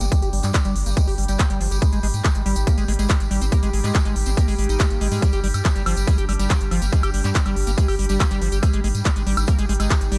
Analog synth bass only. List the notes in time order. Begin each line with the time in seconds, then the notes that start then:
0.01 G1
0.22 G1
0.33 G1
0.44 G2
0.65 G1
0.76 G1
0.86 G1
1.08 G1
1.18 G1
1.29 G1
1.50 G1
1.61 G1
1.71 G1
1.93 G#1
2.03 G#1
2.14 G#2
2.35 G#1
2.46 G#1
2.56 G#1
2.78 G#1
2.88 G#1
2.99 G#1
3.20 G#1
3.31 G#1
3.42 G#1
3.63 G#1
3.73 G#1
3.84 G#2
4.05 G#1
4.16 G#1
4.27 G#1
4.48 G#1
4.59 G#1
4.69 G#1
4.90 G#1
5.01 G#1
5.12 G#2
5.33 G1
5.44 G1
5.54 G2
5.76 G1
5.86 G1
5.97 G1
6.18 G1
6.29 G1
6.39 G1
6.61 G1
6.71 G1
6.82 G1
7.03 G1
7.14 G1
7.24 G2
7.46 G1
7.56 G1
7.67 G1
7.88 G1
7.99 G1
8.10 G1
8.31 G1
8.41 G1
8.52 G1
8.73 G#1
8.84 G#1
8.95 G#2
9.16 G#1
9.27 G#1
9.37 G#1
9.59 G#1
9.69 G#1
9.80 G#1
10.01 G#1
10.12 G#1